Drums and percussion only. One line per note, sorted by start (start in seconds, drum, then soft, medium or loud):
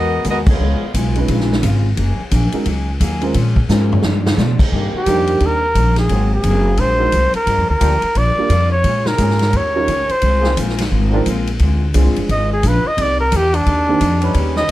0.25 kick soft
0.25 hi-hat pedal medium
0.25 ride medium
0.46 kick medium
0.46 crash medium
0.94 kick soft
0.94 hi-hat pedal medium
0.94 ride medium
1.16 ride soft
1.28 kick soft
1.28 ride medium
1.40 snare soft
1.53 snare medium
1.63 kick soft
1.63 hi-hat pedal medium
1.63 ride medium
1.97 kick soft
1.97 ride medium
2.31 kick soft
2.31 hi-hat pedal medium
2.31 ride medium
2.52 ride medium
2.66 kick soft
2.66 ride medium
3.01 kick soft
3.01 hi-hat pedal medium
3.01 ride medium
3.21 ride soft
3.34 kick soft
3.34 ride medium
3.56 kick medium
3.69 snare medium
3.69 hi-hat pedal medium
3.92 floor tom medium
4.03 snare medium
4.26 snare medium
4.38 snare medium
4.38 hi-hat pedal medium
4.59 kick medium
4.59 crash medium
4.72 kick soft
5.06 kick soft
5.06 hi-hat pedal medium
5.06 ride medium
5.27 ride soft
5.40 kick soft
5.40 ride medium
5.75 kick soft
5.75 hi-hat pedal medium
5.75 ride medium
5.96 snare soft
5.96 ride soft
6.09 kick soft
6.09 ride medium
6.43 kick soft
6.43 hi-hat pedal medium
6.43 ride medium
6.77 kick soft
6.77 ride medium
7.12 kick soft
7.12 hi-hat pedal medium
7.12 ride medium
7.34 ride soft
7.47 kick soft
7.47 ride medium
7.81 kick soft
7.81 hi-hat pedal medium
7.81 ride medium
8.02 ride medium
8.15 kick soft
8.15 ride medium
8.50 kick soft
8.50 hi-hat pedal medium
8.50 ride medium
8.84 kick soft
8.84 ride medium
9.06 snare medium
9.18 kick soft
9.18 hi-hat pedal medium
9.18 ride medium
9.30 snare soft
9.39 snare soft
9.39 ride soft
9.53 kick soft
9.53 ride medium
9.88 kick soft
9.88 hi-hat pedal soft
9.88 ride medium
10.09 ride soft
10.22 kick soft
10.22 ride medium
10.44 snare soft
10.57 kick soft
10.57 hi-hat pedal medium
10.57 ride medium
10.69 snare soft
10.78 snare soft
10.78 ride medium
10.92 kick soft
11.26 kick soft
11.26 hi-hat pedal medium
11.26 ride medium
11.47 ride medium
11.59 kick soft
11.59 ride medium
11.94 kick soft
11.94 hi-hat pedal medium
11.94 ride medium
12.16 ride soft
12.29 kick soft
12.29 ride medium
12.63 kick soft
12.63 hi-hat pedal medium
12.63 ride medium
12.98 kick soft
12.98 ride medium
13.32 kick soft
13.32 hi-hat pedal medium
13.32 ride medium
13.54 ride medium
13.66 kick soft
13.66 ride medium
14.01 kick soft
14.01 hi-hat pedal medium
14.01 ride medium
14.22 ride medium
14.34 kick soft
14.34 ride medium
14.56 snare soft